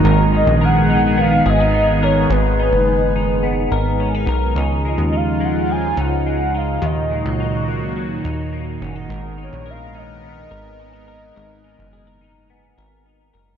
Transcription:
Already playing: clean electric guitar D#3 A#3 D#4, analog synth pad D#3
0.03 analog synth bass G#1, clean electric guitar G#2 A#4, analog synth pad G#3 B3 G#4
0.34 clean electric guitar D#4, soft synth lead D#5
0.46 analog synth bass A#1
0.61 clean electric guitar A#4, soft synth lead F#5
0.90 clean electric guitar D#4
1.17 clean electric guitar B3, soft synth lead F5
1.45 analog synth bass G#1, clean electric guitar G#4, soft synth lead D#5
1.60 clean electric guitar A#4
1.74 clean electric guitar D#4
2.03 clean electric guitar A#4, soft synth lead C#5
2.30 analog synth bass G#1, clean electric guitar G#2, soft synth lead B4
2.59 clean electric guitar D#4
2.72 analog synth bass F#1
3.16 clean electric guitar D#4
3.43 clean electric guitar B3
3.71 analog synth bass G#1, clean electric guitar A#4
4.00 clean electric guitar C#4
4.15 clean electric guitar D#4
4.27 analog synth bass B1, clean electric guitar A#4
4.56 analog synth bass C#2, clean electric guitar C#3 D#4, analog synth pad C#3 F3 D#4 F4, vibraphone G#5
4.85 clean electric guitar G#3, soft synth lead D#5
4.98 analog synth bass D#2
5.13 clean electric guitar D#4
5.17 soft synth lead F5
5.40 clean electric guitar G#3
5.45 soft synth lead F#5
5.69 clean electric guitar F3, soft synth lead G#5, vibraphone A#5
5.97 analog synth bass C#2, clean electric guitar D#4, soft synth lead F#5
6.26 clean electric guitar G#3, soft synth lead F#5
6.54 clean electric guitar D#4, soft synth lead F5
6.81 analog synth bass D#2, analog synth pad A#2 D#3 F#3 F#4, clean electric guitar D#3 D#4, vibraphone D#5
6.86 soft synth lead D#5
7.11 clean electric guitar G#3
7.25 analog synth bass C#2, clean electric guitar A#3
7.40 clean electric guitar D#4
7.68 clean electric guitar A#3
7.96 clean electric guitar F#3
8.24 analog synth bass D#2, clean electric guitar D#4
8.53 clean electric guitar A#3
8.81 analog synth bass F#1, clean electric guitar C#4, vibraphone F#5
8.96 clean electric guitar D#4
9.09 analog synth bass G#1, clean electric guitar G#2 A#4, analog synth pad G#3 B3 A#4
9.38 clean electric guitar D#4
9.43 soft synth lead C#5
9.53 analog synth bass A#1
9.66 clean electric guitar A#4
9.70 soft synth lead F5
9.95 clean electric guitar D#4, soft synth lead D#5
10.24 clean electric guitar B3, soft synth lead D#5
10.51 analog synth bass G#1, clean electric guitar A#4
10.79 clean electric guitar C#4
10.93 clean electric guitar D#4
11.08 clean electric guitar A#4
11.36 analog synth bass G#1, clean electric guitar G#2 A#4
11.64 clean electric guitar D#4
11.79 analog synth bass F#1
11.93 clean electric guitar G#4
12.07 clean electric guitar A#4
12.21 clean electric guitar D#4
12.50 clean electric guitar B3, vibraphone G#5
12.78 analog synth bass G#1, clean electric guitar A#4
13.06 clean electric guitar D#4
13.33 analog synth bass F#1, clean electric guitar A#4

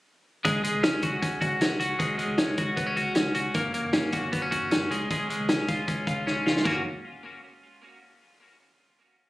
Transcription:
0.45 picked electric bass C#2, clean electric guitar G#3, kick, closed hi-hat
0.64 clean electric guitar G#3, closed hi-hat
0.74 picked electric bass C#2
0.83 picked electric bass C#2, clean electric guitar C#4, snare, closed hi-hat
1.02 picked electric bass C#2, clean electric guitar F#4, kick, closed hi-hat
1.22 picked electric bass C#2, clean electric guitar C#4, kick, closed hi-hat
1.41 picked electric bass C#2, clean electric guitar F#4, kick, closed hi-hat
1.60 picked electric bass C#2, clean electric guitar C#4, snare, closed hi-hat
1.80 picked electric bass C#2, clean electric guitar F#4, closed hi-hat
1.99 picked electric bass C#2, clean electric guitar G#3, kick, closed hi-hat
2.18 clean electric guitar G#3, closed hi-hat
2.28 picked electric bass C#2
2.38 picked electric bass C#2, clean electric guitar C#4, snare, closed hi-hat
2.57 picked electric bass C#2, clean electric guitar F#4, kick, closed hi-hat
2.77 picked electric bass C#2, clean electric guitar B3, kick, closed hi-hat
2.87 clean electric guitar C#4
2.96 picked electric bass C#2, clean electric guitar F#4, closed hi-hat
3.15 picked electric bass C#2, clean electric guitar C#4, snare, closed hi-hat
3.35 picked electric bass C#2, clean electric guitar F#4, closed hi-hat
3.54 picked electric bass F#1, clean electric guitar A#3, kick, closed hi-hat
3.74 clean electric guitar A#3, closed hi-hat
3.84 picked electric bass F#1
3.93 picked electric bass F#1, clean electric guitar C#4, snare, closed hi-hat
4.12 picked electric bass F#1, clean electric guitar F#4, kick, closed hi-hat
4.32 picked electric bass F#1, clean electric guitar B3, kick, closed hi-hat
4.42 clean electric guitar C#4
4.51 picked electric bass F#1, clean electric guitar F#4, kick, closed hi-hat
4.71 picked electric bass F#1, clean electric guitar C#4, snare, closed hi-hat
4.91 picked electric bass C#2, clean electric guitar G#3, closed hi-hat
5.10 clean electric guitar G#3, kick, closed hi-hat
5.30 clean electric guitar G#3, closed hi-hat
5.40 picked electric bass C#2
5.49 picked electric bass C#2, clean electric guitar C#4, snare, closed hi-hat
5.68 picked electric bass C#2, clean electric guitar F4, kick, snare, closed hi-hat
5.88 picked electric bass C#2, clean electric guitar C#4, kick, closed hi-hat
6.07 picked electric bass C#2, clean electric guitar F4, kick, closed hi-hat
6.27 picked electric bass C#2, clean electric guitar C#4, snare
6.46 picked electric bass C#2, clean electric guitar F4, snare
6.56 snare
6.65 picked electric bass F#1, clean electric guitar A#3 C#4 F#4, kick, crash

